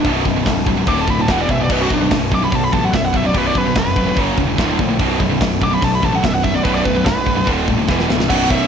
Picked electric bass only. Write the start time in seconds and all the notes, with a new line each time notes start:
0.05 B0
0.26 B0
0.46 C#1
0.87 D1
1.08 D1
1.29 E1
1.49 B0
1.70 B0
1.91 B0
2.11 B0
2.52 B1
2.73 A1
2.94 B0
3.35 B0
3.55 B0
3.76 F1
4.17 F#1
4.38 E1
4.59 D1
4.79 A#1
4.99 B0
5.21 B0
5.41 B0
5.83 B1
6.03 A1
6.24 B0
6.65 B0
6.86 B0
7.07 B0
7.47 D1
7.68 D#1
7.89 E1
8.10 C#1
8.30 B0